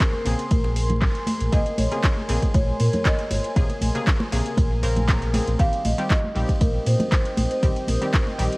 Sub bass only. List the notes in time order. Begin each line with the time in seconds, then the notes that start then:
0.26 A#1
0.51 A#1
1.41 A#1
1.53 A#1
1.78 A#1
2.29 A#1
2.54 A#1
2.80 A#2
3.31 G#1
3.56 A#1
3.81 A#1
4.32 A#1
4.58 A#1
4.83 A#1
5.47 A#1
5.59 A#1
5.85 A#1
6.36 A#1
6.61 A#1
6.87 A#2
7.38 A#1
7.63 A#1
7.88 A#1
8.39 A#1